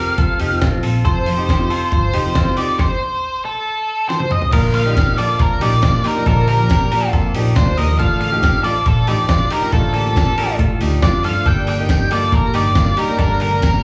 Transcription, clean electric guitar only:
Already playing: G4 A#4
0.18 F4 A4
0.40 D#4 G4
0.62 C4 F4
0.83 F4 A4
1.05 F4 A4
1.38 D#4 G4
1.70 F4 A4
2.14 D#4 G4
2.36 C4 F4
2.58 D#4 G4
4.53 F4 A#4
4.86 D#4 G4
5.18 F4 A4
5.61 D#4 G4
5.83 D4 F4
6.05 D#4 G4
6.26 F4 A4
6.48 G4 A#4
6.92 G4 A#4
7.13 F4 A4
7.35 D#4 G4
7.57 D4 F4
7.78 G4 A#4
8.00 F4 A4
8.32 D#4 G4
8.64 F4 A4
9.08 D#4 G4
9.29 D4 F4
9.51 D#4 G4
9.73 F4 A4
9.94 A#3 G4
10.38 G4 A#4
10.60 F4 A4
10.81 D#4 G4
11.03 D4 F4
11.24 F4 A4
11.46 D4 A4
11.79 D#4 G4
12.11 F4 A4
12.54 D#4 G4
12.76 D4 F4
12.97 D#4 G4
13.18 D4 A4
13.40 G4 A#4

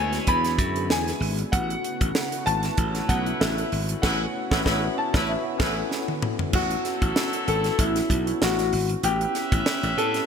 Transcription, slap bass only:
Already playing: D2
0.27 E2
0.58 F#2
0.89 E2
1.20 G#1
1.53 A1
2.01 A1
2.46 G#1
2.78 A1
3.09 B1
3.41 A1
3.72 G#1
4.03 A1
4.52 A1
4.66 A1
5.14 A1
5.59 A1
6.53 A1
7.02 A1
7.48 G#1
7.79 A1
8.10 B1
8.42 A1
8.72 G#1
9.03 A1
9.52 A1
9.83 A1
9.97 A2

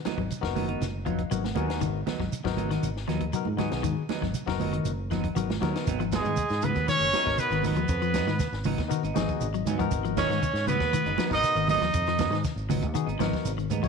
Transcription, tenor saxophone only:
6.15 G#3
6.65 B3
6.91 C#4
7.41 B3
7.67 B3
10.18 C#4
10.69 B3
11.33 D#4
11.71 D#4

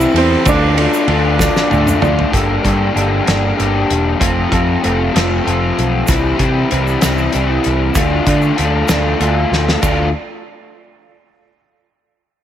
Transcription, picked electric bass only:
0.14 E2
0.45 D2
1.08 D2
1.72 D2
2.02 D2
2.34 G1
2.64 G2
2.96 G1
3.28 G1
3.60 G1
3.90 E1
4.21 F1
4.52 F2
4.85 F1
5.16 F1
5.47 F1
5.78 B1
6.08 C2
6.39 C3
6.72 C2
7.04 C2
7.35 C2
7.66 C2
7.95 D2
8.27 D3
8.59 D2
8.90 D2
9.20 D2
9.51 D2
9.83 D2

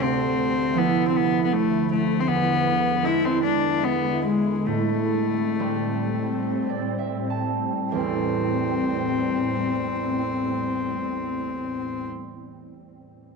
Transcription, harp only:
Already playing: A3 C4
0.00 D2
0.74 F3 D4 E4
2.28 E2
3.02 G#3 D4 E4
4.66 A2
5.59 G3 A3 C4
6.69 D5
6.99 E5
7.30 A5
7.92 A1 E2
7.97 G3 A3

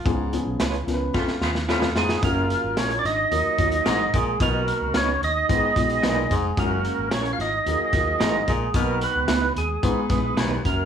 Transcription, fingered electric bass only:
0.06 C#2
0.46 B1
0.60 C#2
0.87 C#2
1.28 muted fingered electric bass stroke
1.41 D#2
1.95 F2
2.23 F#1
2.64 G#1
2.77 A#1
3.04 G#1
3.31 D#2
3.58 D#2
3.86 A1
4.14 A#1
4.40 B1
4.81 C#2
4.95 C#2
5.22 D#2
5.49 G#1
5.63 muted fingered electric bass stroke
5.76 A#1
6.03 B1
6.31 F1
6.57 F#1
6.98 G#1
7.12 A#1
7.39 G#1
7.66 D#2
7.93 D#2
8.20 A1
8.47 A#1
8.74 B1
9.16 C#2
9.28 C#2
9.56 D#2
9.83 G#1
10.09 A#1
10.37 B1
10.65 F1

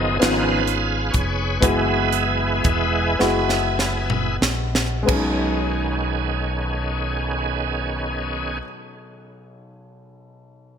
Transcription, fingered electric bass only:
Already playing: F#1
0.22 G#1
1.14 F1
1.62 F#1
2.65 E1
3.20 F#1
4.41 A#1
5.09 B1

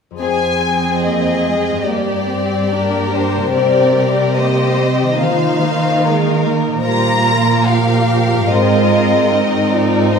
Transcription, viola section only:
0.21 C4
1.04 A#3
1.47 G#3
1.88 A#3
2.31 C4
2.72 A#3 D4
3.12 D4
3.54 G3 C4
3.96 G3
4.38 A#3
4.80 C4
5.21 F3 A#3
5.63 A#3
6.05 G#3
6.46 A#3
6.88 G3
7.29 F3
8.53 G#3 C4
8.94 C4
9.32 D#3
9.73 F3
10.14 C4

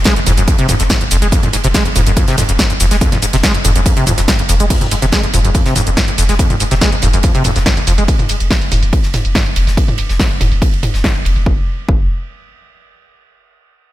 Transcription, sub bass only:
0.16 F1
0.27 F1
0.37 F1
0.59 F1
0.80 F1
1.01 F1
1.11 F1
1.22 F1
1.43 F1
1.64 F1
1.85 F1
1.96 F1
2.06 F1
2.28 F1
2.49 F1
2.70 F1
2.80 F1
2.91 F1
3.12 F1
3.33 F1
3.54 F1
3.65 F1
3.75 F1
3.97 F1
4.18 F1
4.39 F1
4.49 F1
4.60 F1
4.81 F1
5.02 F1
5.23 F1
5.34 F1
5.44 F1
5.66 F1
5.87 F1
6.08 F1
6.18 F1
6.29 F1
6.50 F1
6.71 F1
6.92 F1
7.03 F1
7.14 F1
7.35 F1
7.56 F1
7.77 F1
7.87 F1
7.98 F1
8.19 F1
8.40 F1
8.61 F1
8.72 F1
8.83 F1
9.04 F1
9.25 F1
9.46 F1
9.56 F1
9.67 F1
9.88 F1
10.09 F1
10.30 F1
10.41 F1
10.51 F1
10.73 F1
10.94 F1
11.15 F1
11.25 F1
11.36 F1
11.46 F1
11.89 F1

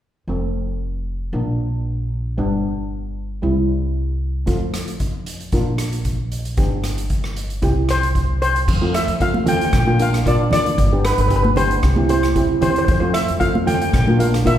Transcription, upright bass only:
0.27 F1
1.33 A#1
2.38 G1
3.43 C2
4.48 F2
5.53 A#1
6.57 G1
7.63 C2
8.68 F2
9.07 F2
9.73 A#1
10.26 A#2
10.51 F2
10.78 G1
11.18 G1
11.83 C2
12.36 C3
12.62 E2
12.88 F2
13.29 F2
13.94 A#1
14.46 A#2

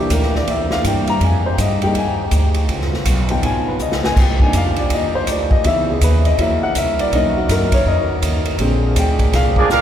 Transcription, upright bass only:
0.10 D2
0.47 E2
0.84 G2
1.20 F2
1.58 G2
1.94 D#2
2.31 D2
2.69 C#2
3.05 B1
3.42 G#1
3.79 C#2
4.16 C2
4.53 F2
4.90 D#2
5.27 D2
5.64 C#2
6.01 D#2
6.38 E2
6.75 C2
7.12 B1
7.49 F#2
7.85 F2
8.22 D#2
8.59 A#1
8.95 D2
9.32 C2
9.70 A#1

